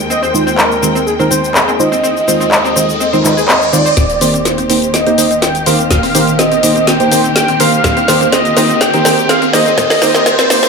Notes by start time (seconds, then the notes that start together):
Already playing: D#2 D#3 G#3 G5
0.10 C4 D#5, riser, shaker
0.23 C4 C5, shaker
0.34 D#3 G#3 D#4 F4 C5, shaker
0.47 C4, shaker
0.58 C4 A#4, clap, shaker
0.72 shaker
0.83 D#3 G#3 C4 D#4 F4 C5, shaker
0.95 C4, shaker
1.07 G#4, shaker
1.19 D#3 G#3 C4 D#4 F4 A#4 C5, shaker
1.31 D#3 G#3 C4 D#4 F4 C5, shaker
1.44 shaker
1.55 C4 G#4, clap, shaker
1.68 C4, shaker
1.79 D#3 G#3 D#4 F4 C5 D#5, shaker
1.92 C4, shaker
2.04 C4, shaker
2.17 shaker
2.28 D#3 G#3 C4 D#4 F4 C5, shaker
2.40 C4, shaker
2.52 clap, shaker
2.65 C4, shaker
2.76 D#3 G#3 C4 D#4 F4 C5, shaker
2.89 shaker
3.00 C4, shaker
3.13 D#3 G#3 C4 D#4 F4 C5, shaker
3.24 D#3 G#3 D#4 F4 C5, clap, shaker
3.37 G#4, shaker
3.48 C4 D#5, clap, shaker
3.62 shaker
3.73 D#3 G#3 C4 D#4 F4 C5 D5, shaker
3.86 C5, shaker
3.97 D#1 D#3 A#3 C4 G4 D5, snare, closed hi-hat, riser, shaker
4.10 closed hi-hat, shaker
4.21 D#3 A#3 C4 D#4 G4 C5, open hi-hat, shaker
4.34 C4, closed hi-hat, shaker
4.45 C5, snare, closed hi-hat, shaker
4.58 C4, closed hi-hat, shaker
4.70 D#3 A#3 C4 D#4 G4 C5, open hi-hat, shaker
4.82 closed hi-hat, shaker
4.94 C4 D#5, snare, closed hi-hat, shaker
5.06 D#3 A#3 C4 D#4 G4 C5, closed hi-hat, shaker
5.18 D#3 A#3 D#4 G4 C5, open hi-hat, shaker
5.31 C4, closed hi-hat, shaker
5.42 C4 G5, snare, closed hi-hat, shaker
5.55 closed hi-hat, shaker
5.66 D#3 A#3 C4 D#4 G4 C5 F5, open hi-hat, shaker
5.79 C4, closed hi-hat, shaker
5.91 D#1 F5, snare, closed hi-hat, shaker
6.03 C4, open hi-hat, shaker
6.15 D#3 A#3 C4 D#4 G4 C5, open hi-hat, shaker
6.27 closed hi-hat, shaker
6.39 C4 D#5, snare, closed hi-hat, shaker
6.52 C4, closed hi-hat, shaker
6.63 D#3 A#3 D#4 G4 C5, open hi-hat, shaker
6.76 C4, closed hi-hat, shaker
6.87 C4 G5, snare, closed hi-hat, shaker
7.00 D#3 A#3 D#4 G4 C5, closed hi-hat, shaker
7.12 D#3 A#3 C4 D#4 G4 C5, open hi-hat, shaker
7.24 C4, closed hi-hat, shaker
7.36 G5, snare, closed hi-hat, shaker
7.48 C4, closed hi-hat, shaker
7.60 D#3 A#3 C4 D#4 G4 C5 F5, open hi-hat, shaker
7.73 closed hi-hat, shaker
7.84 D#1 C4 F5, snare, closed hi-hat, shaker
7.97 C4, closed hi-hat, shaker
8.08 D#3 A#3 D#4 G4 C5, snare, open hi-hat, shaker
8.21 C4, closed hi-hat, shaker
8.32 C4 D#5, snare, closed hi-hat, shaker
8.45 closed hi-hat, shaker
8.57 D#3 A#3 C4 D#4 G4 C5, snare, open hi-hat, shaker
8.69 C4, closed hi-hat, shaker
8.81 G5, snare, closed hi-hat, shaker
8.94 D#3 A#3 C4 D#4 G4 C5, closed hi-hat, shaker
9.05 D#3 A#3 C4 D#4 G4 C5, snare, open hi-hat, shaker
9.18 closed hi-hat, shaker
9.29 C4 F5, snare, closed hi-hat, shaker
9.42 C4, closed hi-hat, shaker
9.53 D#3 A#3 D#4 G4 C5 D#5, snare, open hi-hat, shaker
9.66 C4, shaker
9.78 D#1 C4 D#5, snare, closed hi-hat, shaker
9.90 snare, open hi-hat, shaker
10.02 D#3 A#3 C4 D#4 G4 C5, snare, open hi-hat, shaker
10.15 C4, snare, closed hi-hat, shaker
10.26 C5, snare, closed hi-hat, shaker
10.39 C4, snare, closed hi-hat, shaker
10.50 D#3 A#3 C4 D#4 G4 C5, snare, open hi-hat, shaker
10.63 snare, closed hi-hat, shaker